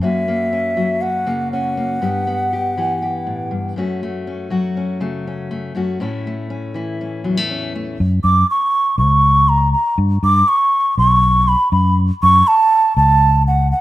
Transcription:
0.01 F#2 A#3 C#4 F#4 E5
0.28 A#3
0.53 C#4
0.77 F#3 F#4
1.01 C#4 F#5
1.27 C#3 A#3
1.52 C#4 F#5
1.77 A#3
2.02 G2 B3 G4
2.27 B3
2.53 G4
2.77 E3 G4
3.02 G4
3.27 A2
3.51 G2
3.76 F#2 A3 C#4 F#4
4.03 A3
4.27 C#4
4.50 F#3 F#4
4.77 C#4
5.00 C#3 A3
5.27 C#4
5.51 A3
5.75 F#2 A3 C#4 F#4
6.00 A2 A3 C#4 E4
6.27 A3
6.50 C#4
6.74 E3 E4
7.01 C#4
7.24 E2 F#3
7.37 A3
7.51 C#4
7.75 A3
8.00 F#2
8.23 F#2 D6
8.50 C#6
8.98 C#2 C#6
9.49 A#5
9.73 A#5
9.98 G2
10.23 G2 D6
10.48 C#6
10.98 B1 C#6
11.48 B5
11.72 F#2 B5
12.22 F#2 C#6
12.47 A5
12.97 C#2 A5
13.47 F#5
13.72 F#5

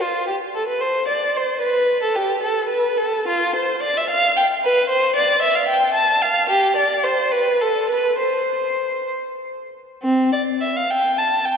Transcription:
0.01 F4
0.27 G4
0.55 A4
0.68 B4
0.81 C5
1.08 D5
1.36 C5
1.61 B4
2.02 A4
2.16 G4
2.43 A4
2.69 B4
2.97 A4
3.28 F4
3.56 C5
3.83 D5
3.97 E5
4.10 F5
4.37 G5
4.64 B4
4.90 C5
5.16 D5
5.42 E5
5.55 F5
5.68 G5
5.94 A5
6.22 F5
6.50 G4
6.76 D5
7.03 C5
7.32 B4
7.61 A4
7.90 B4
8.19 C5
10.03 C4
10.33 D5
10.61 E5
10.76 F5
10.90 G5
11.18 A5
11.45 G5

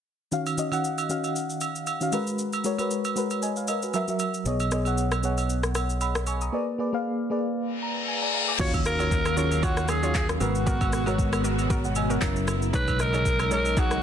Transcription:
0.31 D#3 C#4 F#4 F5, shaker
0.46 high agogo, shaker
0.57 D#3 C#4 F#4 D#5, shaker
0.71 D#3 C#4 F#4 F#5, high agogo, shaker
0.84 shaker
0.98 high agogo, shaker
1.09 D#3 C#4 F#4 F5, shaker
1.24 high agogo, shaker
1.36 shaker
1.50 shaker
1.61 high agogo, shaker
1.75 shaker
1.87 high agogo, shaker
2.01 D#3 C#4 F#4 F5, shaker
2.12 G#3 F#4 A#4 B4, high agogo, shaker
2.27 shaker
2.38 shaker
2.53 high agogo, shaker
2.64 G#3 F#4 A#4 C#5, shaker
2.78 G#3 F#4 A#4 B4, high agogo, shaker
2.91 shaker
3.04 high agogo, shaker
3.16 G#3 F#4 A#4 B4, shaker
3.30 high agogo, shaker
3.42 D#5 G#5, shaker
3.56 B4 F5, shaker
3.68 A#4 D#5, high agogo, shaker
3.82 F#4 B4, shaker
3.94 F#3 F#4 A#4 E5, high agogo, shaker
4.08 F#3 F#4 A#4 E5, shaker
4.19 high agogo, shaker
4.34 shaker
4.45 B1 B3 G#4 C#5 D#5, shaker
4.60 high agogo, shaker
4.71 B3 G#4 C#5 D#5, cross-stick, shaker
4.85 B3 G#4 C#5 F#5, high agogo, shaker
4.98 shaker
5.12 cross-stick, high agogo, shaker
5.23 B3 G#4 C#5 F#5, shaker
5.37 high agogo, shaker
5.49 shaker
5.63 cross-stick, shaker
5.75 cross-stick, high agogo, shaker
5.89 shaker
6.01 F#5 B5, high agogo, shaker
6.15 cross-stick, shaker
6.27 G#5 C#6, high agogo, shaker
6.41 A#5 D#6, shaker
6.52 A#3 G#4 B4 D5
6.78 A#3 G#4 B4 D5
6.92 A#3 G#4 B4 F5
7.30 A#3 G#4 B4 D5
7.56 reverse cymbal
7.83 A#5
8.08 G#5
8.22 D5 G#5
8.34 F5 A#5
8.48 G#5 D6
8.59 D#2 D#3 F#3 C#4 F4 F#4 C#5 F5, kick, crash, impact, shaker
8.74 kick, high agogo, shaker
8.85 D#3 C#4 F#4 A#4 F5, cross-stick, shaker
8.99 F4 F#4 C#5, high agogo, shaker
9.11 kick, shaker
9.25 cross-stick, high agogo, shaker
9.37 D#3 C#4 F4 F#4 G#4 A#4 C#5, shaker
9.45 A#4
9.51 high agogo, shaker
9.62 F4 F#4 C#5, kick, shaker
9.77 cross-stick, shaker
9.88 G#4, cross-stick, high agogo, shaker
10.03 F4 F#4 C#5, shaker
10.15 G#4, kick, clap, high agogo, low woodblock, shaker
10.29 cross-stick, shaker
10.40 G#1 B2 G#3 B3 F#4 A#4 B4, high agogo, shaker
10.55 shaker
10.66 B3 F#4 A#4, kick, shaker
10.81 kick, high agogo, shaker
10.93 cross-stick, shaker
11.06 G#3 B3 F#4 A#4 C#5, high agogo, shaker
11.18 kick, shaker
11.33 cross-stick, high agogo, shaker
11.44 B3 F#4 A#4, shaker
11.58 high agogo, shaker
11.70 B3 F#4 A#4, kick, shaker
11.84 C#5 F#5, shaker
11.95 D#5 G#5, high agogo, shaker
12.10 B3 F#4 A#4 C#5 F#5, shaker
12.21 F#1 C#3 F#3 C#4 E4 A#4, kick, clap, high agogo, low woodblock, shaker
12.36 shaker
12.48 cross-stick, high agogo, shaker
12.62 shaker
12.73 B1 B2 F#3 G#3 D#4 G#4 B4 C#5, kick, shaker
12.88 kick, high agogo, shaker
12.99 B2 G#3 D#4 A#4 D#5, cross-stick, shaker
13.13 D#4 G#4 C#5, high agogo, shaker
13.25 kick, shaker
13.39 cross-stick, high agogo, shaker
13.50 B2 G#3 D#4 G#4 A#4 C#5, shaker
13.65 high agogo, shaker
13.77 D#4 F#4 G#4 C#5, kick, shaker
13.91 cross-stick, shaker

